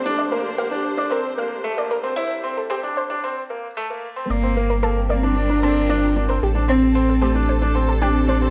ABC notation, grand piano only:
X:1
M:4/4
L:1/16
Q:1/4=113
K:Gm
V:1 name="Grand piano"
D2 B,2 B, D2 D C2 B,2 A, B,2 C | =E2 C2 C D2 D C2 B,2 A, B,2 C | z C B,2 B,2 B, D2 D C2 D2 D C | z D C2 C2 C D2 D C2 D2 D C |]